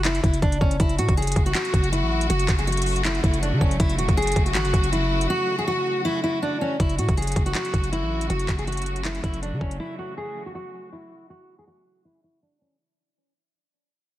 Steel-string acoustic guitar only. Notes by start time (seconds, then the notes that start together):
0.05 E4
0.24 E4
0.42 D4
0.61 C#4
0.80 E4
0.99 F#4
1.17 G#4
1.46 F#4
1.55 F#4
1.92 E4
2.30 F#4
2.59 G#4
2.67 F#4
3.05 E4
3.24 E4
3.42 D4
3.61 C#4
3.80 E4
3.99 F#4
4.17 G#4
4.46 F#4
4.55 F#4
4.92 E4
5.30 F#4
5.59 G#4
5.67 F#4
6.05 E4
6.24 E4
6.42 D4
6.61 C#4
6.80 E4
6.99 F#4
7.17 G#4
7.46 F#4
7.55 F#4
7.92 E4
8.30 F#4
8.59 G#4
8.67 F#4
9.05 E4
9.24 E4
9.42 D4
9.61 C#4
9.80 E4
9.99 F#4
10.17 G#4
10.46 F#4
10.55 F#4
10.93 E4
11.30 F#4
11.59 G#4
11.67 F#4
12.05 E4
12.24 E4
12.42 D4
12.61 C#4